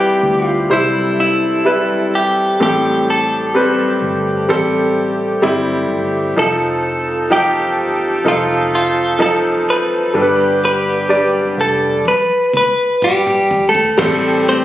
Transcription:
0.00 0.19 C2 medium
0.00 0.19 C3 soft
0.00 2.57 C3 medium
0.00 0.70 G3 medium
0.00 10.11 C4 medium
0.00 0.70 E4 soft
0.00 2.57 E4 medium
0.00 0.46 G4 medium
0.00 0.68 G4 medium
0.00 2.61 A4 soft
0.00 0.66 B4 medium
0.00 0.71 C5 medium
0.23 0.67 D2 medium
0.46 0.75 F4 medium
0.70 2.09 C2 medium
0.70 1.61 G3 medium
0.70 1.61 E4 soft
0.70 1.19 E4 medium
0.70 2.59 A4 medium
0.70 1.61 C5 medium
1.20 2.17 E4 medium
1.65 2.55 G3 medium
1.65 2.56 E4 medium
1.65 2.56 B4 medium
2.15 2.61 G4 medium
2.60 3.98 A1 medium
2.60 3.98 A2 medium
2.60 3.50 G3 medium
2.60 6.33 A3 medium
2.60 3.50 C4 soft
2.60 6.33 G4 medium
2.60 3.10 G4 medium
2.60 3.50 A4 medium
3.10 5.87 A4 medium
3.54 4.44 G3 medium
3.54 4.44 C4 medium
3.54 4.45 B4 medium
4.02 4.46 G1 medium
4.49 5.39 A1 medium
4.49 5.38 G3 medium
4.49 5.38 C4 medium
4.49 5.39 A4 medium
5.42 5.87 G1 medium
5.42 6.32 G3 medium
5.42 6.32 C4 medium
5.42 6.32 E4 medium
5.90 6.34 G1 medium
6.37 7.78 F1 medium
6.37 7.26 F3 medium
6.37 10.11 F3 medium
6.37 7.27 D#4 medium
6.37 10.11 D#4 medium
6.37 10.11 A4 medium
6.37 7.27 A4 medium
6.37 7.28 A4 medium
7.30 8.20 F3 medium
7.30 8.21 D#4 medium
7.30 8.21 G4 medium
7.30 8.28 G4 medium
7.78 8.22 G1 medium
8.25 9.63 F1 medium
8.25 9.15 F3 medium
8.25 9.15 D#4 soft
8.25 8.74 F4 medium
8.25 9.16 A4 medium
8.75 9.22 F4 medium
9.19 10.10 F3 medium
9.19 10.10 D#4 medium
9.19 10.10 A4 medium
9.19 9.35 A4 medium
9.70 10.60 B4 medium
10.14 11.53 G1 medium
10.14 11.53 G2 soft
10.14 11.04 G3 medium
10.14 12.04 B3 medium
10.14 11.05 D4 medium
10.14 12.04 D4 medium
10.14 12.03 G4 medium
10.14 10.21 A4 soft
10.22 11.09 B4 medium
10.65 11.55 B4 medium
11.09 12.00 G3 medium
11.09 12.00 D4 medium
11.09 12.01 D5 medium
11.58 12.02 F1 medium
11.58 12.08 A4 medium
12.05 12.52 B4 medium
12.05 high tom soft
12.53 13.49 B4 medium
12.53 mid tom medium
13.02 13.64 G3 medium
13.02 13.70 G4 medium
13.02 mid tom medium
13.27 mid tom medium
13.51 floor tom medium
13.69 14.44 A3 medium
13.69 14.48 A4 medium
13.75 floor tom medium
13.97 14.64 A1 medium
13.97 14.64 A2 medium
13.97 14.64 C3 medium
13.97 14.64 G3 medium
13.97 14.64 A3 medium
13.97 14.64 C4 medium
13.97 14.64 G4 medium
13.97 14.64 A4 medium
13.97 kick loud
13.97 floor tom loud
13.97 crash medium
14.49 14.64 C4 medium
14.49 14.64 C5 loud

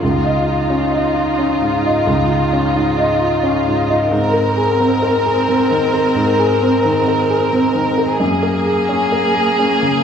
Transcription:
0.01 2.03 C#2 soft
0.01 4.13 D#4 medium
0.01 4.07 F4 medium
0.24 0.61 D#5 soft
0.47 0.83 F4 soft
0.70 1.06 C#4 soft
0.92 1.29 D#5 soft
1.14 1.51 F4 soft
1.39 1.75 C#4 soft
1.62 1.98 G#2 soft
1.85 2.21 D#5 soft
2.07 4.07 C#2 medium
2.30 2.66 F4 soft
2.53 2.89 C#4 soft
2.75 3.11 G#2 medium
2.98 3.34 D#5 medium
3.21 3.57 F4 soft
3.43 3.80 C#4 medium
3.66 4.03 G#2 soft
3.88 4.11 D#5 medium
4.11 6.12 G#2 medium
4.11 8.21 C4 medium
4.11 8.16 A#4 medium
4.34 4.70 A#4 soft
4.57 4.93 G#4 soft
4.80 5.16 C4 medium
5.02 5.39 A#4 medium
5.25 5.61 G#4 medium
5.48 5.84 C4 medium
5.70 6.07 D#3 soft
5.94 6.30 A#4 soft
6.15 8.16 G#2 medium
6.39 6.75 G#4 medium
6.62 6.98 C4 medium
6.85 7.21 D#3 medium
7.08 7.44 A#4 medium
7.30 7.66 G#4 medium
7.53 7.89 C4 medium
7.75 8.11 D#3 soft
7.98 8.20 A#4 medium
8.20 10.03 F#2 medium
8.20 10.03 A#3 medium
8.20 10.03 G#4 medium
8.43 8.79 A#4 medium
8.66 9.03 G#4 soft
8.89 9.26 C#4 soft
9.12 9.49 A#4 soft
9.35 9.72 G#4 soft
9.59 9.96 C#4 soft
9.83 10.03 C#3 soft

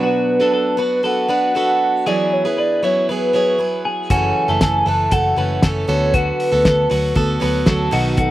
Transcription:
0.00 0.40 B2 medium
0.00 2.06 F#3 medium
0.00 0.42 B3 medium
0.00 0.40 D4 medium
0.00 0.40 F#4 medium
0.00 0.39 F#4 medium
0.00 0.39 B4 medium
0.00 1.01 B4 loud
0.40 0.76 B3 soft
0.40 0.77 D4 soft
0.40 0.78 F#4 soft
0.40 0.52 A4 medium
0.40 0.78 B4 soft
0.54 0.78 A4 medium
0.77 1.02 B3 medium
0.77 1.03 D4 medium
0.77 1.03 F#4 medium
0.77 1.03 B4 medium
0.77 1.04 B4 medium
1.03 1.27 B3 medium
1.03 1.28 D4 medium
1.03 1.29 F#4 medium
1.03 1.29 A4 medium
1.03 1.29 B4 medium
1.03 2.09 F#5 loud
1.29 1.54 B3 medium
1.29 1.55 D4 medium
1.29 1.55 F#4 medium
1.29 1.55 B4 medium
1.29 1.56 B4 medium
1.55 2.06 B3 soft
1.55 2.07 D4 medium
1.55 2.07 F#4 medium
1.55 2.03 A4 medium
1.55 2.07 B4 medium
2.06 2.45 E3 medium
2.06 2.45 F#3 medium
2.06 2.45 B3 medium
2.06 2.45 E4 medium
2.06 2.43 G#4 medium
2.06 2.44 G#4 medium
2.06 2.34 D5 medium
2.33 2.61 C#5 medium
2.45 2.83 B3 soft
2.45 2.83 E4 soft
2.45 2.83 G#4 soft
2.45 2.57 B4 medium
2.58 2.83 B4 medium
2.58 2.86 D5 medium
2.83 3.08 F#3 medium
2.83 3.09 B3 medium
2.83 3.09 E4 medium
2.83 3.10 G#4 medium
2.83 3.09 C#5 medium
3.09 3.32 F#3 medium
3.09 3.33 B3 medium
3.09 3.34 E4 medium
3.09 3.35 G#4 medium
3.09 3.34 B4 medium
3.09 3.82 B4 medium
3.33 3.57 F#3 medium
3.33 3.58 B3 medium
3.33 3.59 E4 medium
3.33 3.59 G#4 medium
3.33 3.60 C#5 medium
3.58 4.10 F#3 medium
3.58 4.10 B3 soft
3.58 4.10 E4 medium
3.58 4.11 G#4 medium
3.58 3.85 B4 medium
3.85 4.11 G#4 medium
4.10 4.31 F#1 medium
4.10 4.49 F#2 medium
4.10 4.49 C#3 medium
4.10 4.49 E3 medium
4.10 4.48 A3 medium
4.10 4.48 C#4 medium
4.10 4.47 F#4 medium
4.10 4.47 A4 medium
4.10 4.58 G#5 medium
4.10 kick loud
4.10 closed hi-hat medium
4.48 4.59 F#1 medium
4.48 4.85 E3 soft
4.48 4.86 A3 soft
4.48 4.86 C#4 soft
4.48 4.87 A4 soft
4.48 4.60 A4 medium
4.61 4.82 F#1 medium
4.61 4.87 A4 medium
4.61 4.85 G#5 medium
4.61 kick medium
4.61 snare medium
4.61 closed hi-hat medium
4.86 5.08 F#1 medium
4.86 5.10 E3 medium
4.86 5.11 A3 medium
4.86 5.12 C#4 medium
4.86 5.12 A4 medium
4.86 5.12 B4 medium
4.86 5.14 A5 medium
5.11 5.33 F#1 medium
5.11 5.35 E3 soft
5.11 5.36 A3 medium
5.11 5.37 C#4 medium
5.11 5.38 A4 medium
5.11 5.37 A4 medium
5.11 5.63 F#5 medium
5.11 kick loud
5.11 closed hi-hat medium
5.37 5.58 F#1 medium
5.37 5.62 E3 medium
5.37 5.62 A3 medium
5.37 5.63 C#4 medium
5.37 5.64 A4 medium
5.37 5.63 B4 medium
5.62 5.84 F#1 medium
5.62 5.87 E3 soft
5.62 5.88 A3 medium
5.62 5.88 C#4 medium
5.62 6.11 A4 medium
5.62 5.88 A4 medium
5.62 kick medium
5.62 snare medium
5.62 closed hi-hat medium
5.88 6.30 D2 medium
5.88 6.52 D3 medium
5.88 6.89 F#3 medium
5.88 6.53 B3 medium
5.88 6.52 F#4 medium
5.88 6.51 A4 medium
5.88 6.16 C#5 loud
6.14 6.50 F#4 medium
6.14 7.67 B4 loud
6.14 kick loud
6.14 closed hi-hat medium
6.40 open hi-hat medium
6.52 6.63 D2 medium
6.52 6.90 B3 soft
6.52 6.90 F#4 soft
6.52 6.90 A4 soft
6.52 6.65 A4 medium
6.65 6.86 D2 medium
6.65 6.90 A4 medium
6.65 kick loud
6.65 snare medium
6.65 closed hi-hat medium
6.90 7.12 D2 medium
6.90 7.14 F#3 medium
6.90 7.14 B3 medium
6.90 7.15 F#4 medium
6.90 7.16 A4 medium
6.90 7.16 B4 medium
6.90 open hi-hat medium
7.15 7.37 D2 medium
7.15 7.39 F#3 medium
7.15 7.40 B3 medium
7.15 7.41 F#4 medium
7.15 7.42 A4 medium
7.15 7.41 A4 medium
7.15 kick loud
7.15 closed hi-hat medium
7.40 7.63 D2 medium
7.40 7.65 F#3 medium
7.40 7.66 B3 medium
7.40 7.66 F#4 medium
7.40 7.67 A4 medium
7.40 7.67 B4 medium
7.40 open hi-hat medium
7.66 7.88 D2 medium
7.66 7.91 F#3 medium
7.66 7.91 B3 medium
7.66 7.93 F#4 medium
7.66 7.93 A4 medium
7.66 7.92 A4 medium
7.66 kick medium
7.66 snare medium
7.66 closed hi-hat medium
7.91 8.31 B1 medium
7.91 8.31 B2 medium
7.91 8.31 D#3 medium
7.91 8.31 F#3 medium
7.91 8.31 B3 medium
7.91 8.31 D#4 medium
7.91 8.17 F#4 medium
7.91 8.31 A4 medium
7.91 open hi-hat medium
8.17 8.31 F#4 medium
8.17 8.31 A4 medium
8.17 kick loud
8.17 closed hi-hat medium

